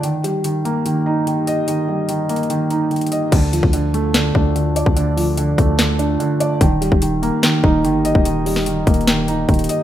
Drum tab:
CC |------------------------------------------------------------------------------------------------|------------------------------------------------------------------------------------------------|x-----------------------------------------------------------------------------------------------|------------------------------------------------------------------------------------------------|
HH |x-----------x-----------x-----------x-----------x-----------------------x-----------x-----------|x-----------------------x-----------x---x---x---x-----------x-----------x--x--x--x--x-----------|x-----------x-----------x-----------x-----------x-----------------------x-----------x-----------|x-----------o-----------x-----------x-----------x-----------x-----------x-----------x-----------|
SD |------------------------------------------------------------------------------------------------|------------------------------------------------------------------------------------------------|------------------------------------------------o-----------------------------------------------|------------------------------------------------o-----------------------------------------------|
BD |------------------------------------------------------------------------------------------------|------------------------------------------------------------------------------------------------|o-----------------o-----------------------------------------o-----------------------------o-----|------------------------------------o-----------------------------------------------------------|

CC |------------------------------------------------------------------------------------------------|------------------------------------------------------------------------------------------------|
HH |x-----------x-----------x-----------x-----------x-----------------------x-----------x-----------|x-----------o-----------x-----------x---x---x---x-----------x-----------x--x--x--x--x-----------|
SD |------------------------------------------------o-----------------------------------------------|------------------o-----------------------------o-----------------------------------------------|
BD |o-----------------o-----------------------------------------o-----------------------------o-----|------------------------------------o-----------------------------------o-----------------------|